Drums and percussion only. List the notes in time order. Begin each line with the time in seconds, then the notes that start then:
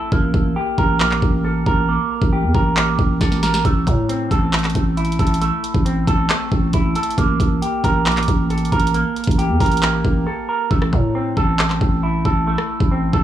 0.12 kick
0.34 kick
0.78 kick
1.00 clap
1.11 clap
1.22 kick
1.66 kick
2.22 kick
2.55 kick
2.77 clap
2.99 kick
3.21 kick, snare
3.32 snare
3.43 snare
3.54 snare
3.65 kick, closed hi-hat
3.87 kick, closed hi-hat
4.09 closed hi-hat
4.31 kick, closed hi-hat
4.53 clap, closed hi-hat
4.59 closed hi-hat
4.64 clap, closed hi-hat
4.70 closed hi-hat
4.75 kick, closed hi-hat
4.97 closed hi-hat
5.05 closed hi-hat
5.12 closed hi-hat
5.19 kick, closed hi-hat
5.27 closed hi-hat
5.34 closed hi-hat
5.42 closed hi-hat
5.64 closed hi-hat
5.75 kick
5.86 closed hi-hat
6.07 kick, closed hi-hat
6.30 clap, closed hi-hat
6.52 kick
6.73 kick, closed hi-hat
6.95 closed hi-hat, open hi-hat
7.03 closed hi-hat
7.11 closed hi-hat
7.18 kick, closed hi-hat
7.40 kick, closed hi-hat
7.62 closed hi-hat
7.84 kick, closed hi-hat
8.06 clap, closed hi-hat
8.12 closed hi-hat
8.17 clap, closed hi-hat
8.23 closed hi-hat
8.28 kick, closed hi-hat
8.50 closed hi-hat
8.58 closed hi-hat
8.65 closed hi-hat
8.72 kick, closed hi-hat
8.80 closed hi-hat
8.87 closed hi-hat
8.94 closed hi-hat
9.16 closed hi-hat
9.24 kick, closed hi-hat
9.31 closed hi-hat
9.39 closed hi-hat
9.60 kick, closed hi-hat, open hi-hat
9.66 closed hi-hat
9.72 closed hi-hat
9.77 closed hi-hat
9.83 clap, closed hi-hat
10.05 kick
10.71 kick
10.82 cross-stick
10.93 kick
11.37 kick
11.59 clap
11.70 clap
11.81 kick
12.25 kick
12.58 cross-stick
12.80 kick
13.13 kick